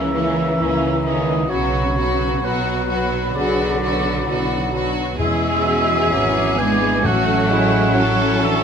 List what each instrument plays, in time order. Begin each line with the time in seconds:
Already playing: double bass section C#2, viola section E3, cello section E3, bassoon E3, violin section A#3 C#4, french horn section C#4, oboe E5, flute section A#5
0.14 viola section E3, violin section A#3 C#4
0.58 double bass section C#2, viola section E3, violin section A#3 C#4, french horn section E4
1.04 cello section D#3, viola section E3, violin section A#3 C#4, oboe D#5
1.49 double bass section B1, cello section C#3, bassoon F#3, viola section F#3, violin section B3 F#4, french horn section F#4, oboe C#5, flute section B5
1.96 viola section F#3, violin section B3 F#4
2.41 double bass section B1, cello section B2, viola section F#3, violin section B3 F#4, oboe B4
2.89 viola section F#3, violin section B3 F#4
3.34 double bass section B1, cello section D3, viola section F#3, violin section B3 F#4, french horn section G#4, oboe D5
3.79 viola section F#3, violin section B3 F#4, french horn section F#4
4.25 double bass section B1, viola section F#3, violin section B3, french horn section E4
4.29 violin section F#4
4.71 viola section F#3, violin section B3 F#4, french horn section D4
5.17 timpani E2, double bass section E2, cello section E3, viola section G#3, bassoon G#3, french horn section E4, violin section G#4, oboe E5, flute section E6
5.21 violin section C#4
5.64 french horn section F#4
6.09 double bass section G#1, bassoon F#3, viola section C#4, french horn section E4, flute section D6
6.14 violin section B3
6.56 bassoon E3, cello section G#3, viola section B3, french horn section D4, oboe G#5
7.02 double bass section A1, timpani A2, cello section F#3, viola section A3, bassoon A3, french horn section C#4, violin section C#4 F#4, oboe F#5, flute section C#6
7.49 bassoon G#3, violin section E4
7.94 bassoon F#3, viola section C#4, violin section E4 A4, flute section C#6
8.42 cello section E3, violin section D4, oboe E5